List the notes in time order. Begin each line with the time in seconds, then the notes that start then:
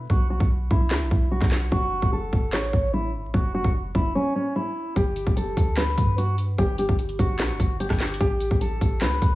0.10 B1 F#4, kick
0.30 F#4
0.40 B1, kick
0.71 B1 E4, kick
0.91 D2, snare, clap
1.01 B1
1.11 B1, kick
1.31 F#4
1.42 B1, kick, snare
1.51 snare, clap
1.72 F#1 F#4, kick
2.02 F#1, kick
2.12 A4
2.33 F#1, kick
2.53 A1 C#5, snare, clap
2.73 A1, kick
2.93 E4
3.14 G1
3.24 A1
3.34 F#1 F#4, kick
3.54 F#4
3.64 F#1, kick
3.95 F#1 E4, kick
4.15 C#4
4.35 C#4
4.56 E4
4.96 G1 G4, kick, closed hi-hat
5.16 closed hi-hat
5.27 F#1, kick
5.37 A4, closed hi-hat
5.57 D2, kick, closed hi-hat
5.77 B4, snare, clap, closed hi-hat
5.98 G2, kick, closed hi-hat
6.18 F#4, closed hi-hat
6.38 closed hi-hat
6.58 G1 G4, kick, closed hi-hat
6.78 G4, closed hi-hat
6.89 G1, kick
6.99 closed hi-hat
7.09 closed hi-hat
7.19 G1 F#4, kick, closed hi-hat
7.39 B1, snare, clap, closed hi-hat
7.50 G1
7.60 G1, kick, closed hi-hat
7.80 G4, closed hi-hat
7.90 G1, kick, cross-stick, snare
8.00 snare, clap, closed hi-hat, open hi-hat
8.07 closed hi-hat
8.14 closed hi-hat
8.20 A1 G4, kick, closed hi-hat
8.40 closed hi-hat
8.51 A1, kick
8.61 A4, closed hi-hat
8.81 A1, kick, closed hi-hat
9.01 C#2 B4, snare, clap, closed hi-hat
9.22 C#2, kick, closed hi-hat